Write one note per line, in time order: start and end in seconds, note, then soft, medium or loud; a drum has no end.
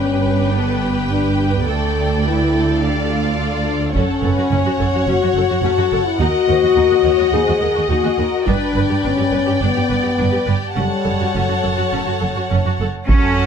0.00 1.63 G1 soft
0.00 1.63 G2 soft
0.00 0.53 C#4 soft
0.00 1.64 G4 soft
0.00 0.52 B4 soft
0.00 1.63 B4 soft
0.00 1.64 B4 soft
0.00 2.77 G5 soft
0.25 taiko soft
0.53 1.09 B3 soft
0.53 0.82 A4 soft
0.82 1.68 G4 soft
1.11 1.53 D4 medium
1.55 1.68 B3 soft
1.67 3.91 D2 soft
1.67 2.10 A3 medium
1.67 3.91 A4 soft
1.67 2.24 A4 soft
1.67 3.91 D5 soft
2.25 2.81 E4 medium
2.25 2.53 B4 soft
2.53 2.81 A4 soft
2.81 3.95 D4 soft
2.81 3.10 G4 soft
2.81 3.94 F5 soft
3.11 3.95 F4 soft
3.94 4.01 F#1 soft
3.94 4.00 F#2 medium
3.94 5.05 C#4 medium
3.94 4.00 C#4 soft
3.94 4.22 A4 soft
3.94 4.23 A4 soft
3.94 6.16 C#5 soft
3.94 8.44 F#5 soft
3.94 taiko soft
4.23 4.29 F#1 soft
4.23 4.28 F#2 soft
4.23 4.29 A4 soft
4.23 4.51 B4 soft
4.37 4.43 F#2 soft
4.37 4.43 F#4 soft
4.51 4.57 F#1 medium
4.51 4.57 F#2 medium
4.51 4.57 C#4 medium
4.51 5.64 C#5 soft
4.65 4.71 F#2 soft
4.65 4.71 F#4 soft
4.79 4.85 F#1 soft
4.79 4.85 F#2 soft
4.79 4.85 A4 soft
4.79 taiko soft
4.93 4.99 F#2 soft
4.93 4.99 F#4 soft
5.07 5.13 F#1 medium
5.07 5.13 F#2 soft
5.07 5.13 C#4 soft
5.07 5.63 F#4 medium
5.21 5.28 F#2 soft
5.21 5.27 F#4 soft
5.35 5.42 F#1 soft
5.35 5.41 F#2 soft
5.35 5.41 A4 soft
5.49 5.56 F#2 soft
5.49 5.55 F#4 soft
5.63 5.69 F#1 medium
5.63 5.69 F#2 medium
5.63 5.69 C#4 medium
5.63 6.06 F#4 medium
5.63 6.20 A4 medium
5.77 5.83 F#2 soft
5.77 5.83 F#4 soft
5.91 5.98 F#1 soft
5.91 5.97 F#2 soft
5.91 5.97 A4 soft
6.05 6.20 E4 medium
6.19 6.26 D#2 medium
6.19 6.26 D#2 soft
6.19 6.26 D#4 soft
6.19 7.32 F#4 medium
6.19 6.47 A#4 soft
6.19 8.44 D#5 soft
6.19 8.44 D#5 medium
6.48 6.54 D#2 soft
6.48 6.54 A#4 soft
6.48 6.77 C5 soft
6.62 6.68 D#2 soft
6.62 6.68 F#4 soft
6.76 6.82 D#2 medium
6.76 6.83 D#2 soft
6.76 6.82 D#4 soft
6.76 7.05 A#4 soft
6.91 6.97 D#2 soft
6.91 6.96 F#4 soft
7.04 7.10 D#2 soft
7.04 7.11 D#2 soft
7.04 7.10 A#4 soft
7.04 7.33 C#5 medium
7.18 7.25 D#2 soft
7.18 7.24 F#4 soft
7.32 7.38 D#2 soft
7.32 7.40 D#2 medium
7.32 7.39 D#4 medium
7.32 7.89 G#4 medium
7.32 7.62 C5 soft
7.47 7.54 D#2 soft
7.47 7.53 F#4 soft
7.61 7.67 D#2 soft
7.61 7.68 D#2 soft
7.61 7.67 A#4 soft
7.61 7.90 A#4 soft
7.75 7.82 D#2 soft
7.75 7.81 F#4 soft
7.89 7.96 D#2 medium
7.89 7.96 D#4 medium
7.89 8.47 F#4 medium
7.89 8.19 G#4 soft
8.03 8.11 D#2 soft
8.03 8.09 F#4 soft
8.18 8.24 D#2 soft
8.18 8.25 D#2 soft
8.18 8.24 A#4 soft
8.18 8.48 A#4 soft
8.47 8.53 G1 soft
8.47 8.53 G2 medium
8.47 8.53 D4 soft
8.47 9.05 D4 medium
8.47 8.74 B4 soft
8.47 9.62 B4 soft
8.47 10.72 D5 soft
8.47 10.72 G5 soft
8.47 taiko soft
8.75 8.81 G1 soft
8.75 8.82 G2 soft
8.75 8.81 B4 soft
8.89 8.96 G2 soft
8.89 8.95 G4 soft
9.03 9.10 G1 soft
9.03 9.10 G2 soft
9.03 9.62 C#4 medium
9.03 9.09 D4 soft
9.17 9.25 G2 soft
9.17 9.23 G4 soft
9.32 9.38 G1 soft
9.32 9.39 G2 soft
9.32 9.38 B4 soft
9.46 9.54 G2 soft
9.46 9.52 G4 soft
9.60 9.67 G1 soft
9.60 9.68 G2 soft
9.60 10.60 B3 medium
9.60 9.66 D4 soft
9.60 10.18 D5 soft
9.75 9.83 G2 soft
9.75 9.81 G4 soft
9.89 9.97 G1 soft
9.89 9.96 G2 soft
9.89 9.95 B4 soft
10.03 10.11 G2 soft
10.03 10.09 G4 soft
10.17 10.24 G1 soft
10.17 10.26 G2 soft
10.17 10.23 D4 soft
10.17 10.47 B4 soft
10.31 10.40 G2 soft
10.31 10.38 G4 soft
10.46 10.54 G1 soft
10.46 10.54 G2 soft
10.46 10.77 G4 soft
10.46 10.52 B4 soft
10.75 10.83 F#1 soft
10.75 10.83 F#2 soft
10.75 11.33 G3 medium
10.75 10.81 C#4 soft
10.75 12.80 A4 soft
10.75 12.87 C#5 soft
10.75 12.84 F#5 soft
10.75 12.88 A5 soft
11.05 11.12 F#1 soft
11.05 11.12 F#2 soft
11.05 11.11 A4 soft
11.19 11.26 F#2 soft
11.19 11.25 F#4 soft
11.34 11.41 F#1 soft
11.34 11.40 F#2 soft
11.34 12.80 F#3 soft
11.34 11.40 C#4 soft
11.48 11.55 F#2 soft
11.48 11.54 F#4 soft
11.63 11.70 F#1 soft
11.63 11.69 F#2 soft
11.63 11.69 A4 soft
11.76 11.83 F#2 soft
11.76 11.82 F#4 soft
11.91 11.99 F#1 soft
11.91 11.98 F#2 soft
11.91 11.97 C#4 soft
12.05 12.12 F#2 soft
12.05 12.11 F#4 soft
12.20 12.28 F#1 soft
12.20 12.26 F#2 soft
12.20 12.26 A4 soft
12.35 12.42 F#2 soft
12.35 12.41 F#4 soft
12.50 12.57 F#1 soft
12.50 12.56 F#2 soft
12.50 12.56 C#4 soft
12.65 12.71 F#2 soft
12.65 12.71 F#4 soft
12.80 12.86 F#1 soft
12.80 12.85 F#2 soft
12.80 12.86 A4 soft
13.08 13.46 F#2 soft
13.08 13.46 F#3 soft
13.08 13.46 F#3 medium
13.08 13.46 C#4 soft
13.08 13.46 C#4 medium
13.08 13.46 A4 soft
13.08 13.46 A4 medium
13.08 13.46 F#5 soft
13.08 13.46 A5 medium
13.08 taiko medium